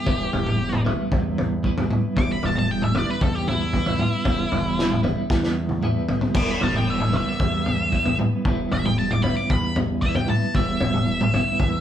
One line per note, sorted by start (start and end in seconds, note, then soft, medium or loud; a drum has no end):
0.00 0.82 G4 loud
0.06 0.27 E1 medium
0.06 0.87 E3 medium
0.06 0.86 G3 medium
0.06 0.85 B3 medium
0.06 0.85 E4 loud
0.06 0.84 B4 loud
0.06 kick loud
0.06 floor tom medium
0.33 0.93 E1 medium
0.33 floor tom medium
0.46 mid tom medium
0.73 mid tom medium
0.84 1.63 E3 medium
0.84 1.64 G3 medium
0.84 1.64 B3 medium
0.84 1.65 E4 medium
0.84 1.66 B4 medium
0.84 floor tom loud
1.12 1.92 E2 loud
1.12 kick loud
1.12 floor tom medium
1.38 floor tom medium
1.63 2.15 E3 medium
1.63 2.16 G3 medium
1.63 2.17 B3 medium
1.63 2.18 E4 medium
1.63 2.18 B4 medium
1.63 kick medium
1.78 floor tom medium
1.91 mid tom medium
2.16 2.37 E1 medium
2.16 2.98 E3 loud
2.16 2.97 G3 loud
2.16 2.96 B3 loud
2.16 2.95 E4 loud
2.16 2.95 B4 loud
2.16 2.30 D6 loud
2.16 kick loud
2.16 floor tom medium
2.32 2.44 B5 loud
2.43 3.03 E1 medium
2.43 2.57 A5 loud
2.43 floor tom medium
2.56 2.71 A5 medium
2.56 mid tom medium
2.71 2.83 G5 medium
2.82 2.98 E5 loud
2.82 mid tom medium
2.95 3.73 E3 medium
2.95 3.73 G3 medium
2.95 3.74 B3 medium
2.95 3.75 E4 medium
2.95 3.76 B4 medium
2.95 3.09 D5 medium
2.95 floor tom loud
3.10 3.22 B4 medium
3.21 4.01 E2 loud
3.21 3.35 A4 loud
3.21 kick loud
3.21 floor tom medium
3.35 3.47 G4 medium
3.48 5.01 E4 loud
3.48 floor tom medium
3.73 4.24 E3 medium
3.73 4.25 G3 medium
3.73 4.26 B3 medium
3.73 4.26 E4 medium
3.73 4.27 B4 medium
3.73 kick medium
3.86 floor tom medium
3.99 mid tom medium
4.25 4.46 E1 medium
4.25 5.05 E3 medium
4.25 5.05 G3 loud
4.25 5.04 B3 loud
4.25 5.03 E4 loud
4.25 5.03 B4 loud
4.25 kick loud
4.25 floor tom medium
4.52 5.13 E1 medium
4.52 floor tom medium
4.79 snare medium
4.92 mid tom medium
5.03 5.81 E3 medium
5.03 5.82 G3 medium
5.03 5.83 B3 medium
5.03 5.83 E4 medium
5.03 5.84 B4 medium
5.03 floor tom loud
5.30 6.11 E2 medium
5.30 kick loud
5.30 snare medium
5.44 snare medium
5.69 high tom medium
5.81 6.33 E3 medium
5.81 6.34 G3 medium
5.81 6.35 B3 medium
5.81 6.36 E4 medium
5.81 6.36 B4 medium
5.81 mid tom medium
6.09 floor tom medium
6.21 floor tom medium
6.34 6.55 E1 medium
6.34 7.15 E3 medium
6.34 7.14 G3 medium
6.34 7.14 B3 medium
6.34 7.13 E4 loud
6.34 7.12 B4 loud
6.34 6.51 D6 loud
6.34 kick loud
6.34 floor tom medium
6.34 crash loud
6.51 6.62 B5 loud
6.61 7.22 E1 medium
6.61 6.75 A5 medium
6.61 floor tom medium
6.74 6.90 G5 medium
6.74 mid tom medium
6.90 7.14 E5 medium
7.00 mid tom medium
7.12 7.91 E3 medium
7.12 7.92 G3 medium
7.12 7.93 B3 medium
7.12 7.94 E4 medium
7.12 7.95 B4 medium
7.12 floor tom medium
7.17 8.17 E5 loud
7.40 8.20 E2 loud
7.40 kick loud
7.40 floor tom medium
7.66 floor tom medium
7.92 8.45 E3 medium
7.92 8.46 G3 medium
7.92 8.47 B3 medium
7.92 8.47 E4 medium
7.92 8.48 B4 medium
7.92 kick medium
8.06 floor tom medium
8.19 mid tom medium
8.45 8.65 E1 loud
8.45 9.27 E3 medium
8.45 9.26 G3 loud
8.45 9.25 B3 medium
8.45 9.24 E4 loud
8.45 9.23 B4 loud
8.45 kick loud
8.45 floor tom medium
8.71 9.32 E1 medium
8.71 8.86 E5 loud
8.71 floor tom medium
8.85 8.98 G5 medium
8.85 mid tom medium
8.99 9.11 A5 medium
9.11 9.23 D6 medium
9.11 mid tom medium
9.23 10.03 G3 medium
9.23 10.04 B3 medium
9.23 10.04 E4 medium
9.23 10.05 B4 medium
9.23 9.36 B5 loud
9.23 floor tom loud
9.27 10.02 E3 medium
9.36 9.49 D6 medium
9.50 10.30 E2 medium
9.50 9.76 B5 loud
9.50 kick loud
9.50 floor tom medium
9.76 floor tom medium
10.02 10.53 E3 medium
10.02 10.54 G3 medium
10.02 10.55 B3 medium
10.02 10.56 E4 medium
10.02 10.57 B4 medium
10.02 10.15 E5 loud
10.02 kick medium
10.15 10.29 G5 medium
10.15 floor tom medium
10.28 10.55 A5 medium
10.28 mid tom medium
10.54 10.75 E1 loud
10.54 11.36 E3 loud
10.54 11.35 G3 loud
10.54 11.35 B3 medium
10.54 11.34 E4 loud
10.54 11.33 B4 medium
10.54 11.80 E5 loud
10.54 kick loud
10.54 floor tom medium
10.80 11.41 E1 medium
10.80 floor tom loud
10.94 mid tom medium
11.21 mid tom medium
11.33 11.80 E3 medium
11.33 11.80 G3 medium
11.33 11.80 B3 medium
11.33 11.80 E4 medium
11.33 11.80 B4 loud
11.33 floor tom loud
11.60 11.80 E2 loud
11.60 kick loud
11.60 floor tom medium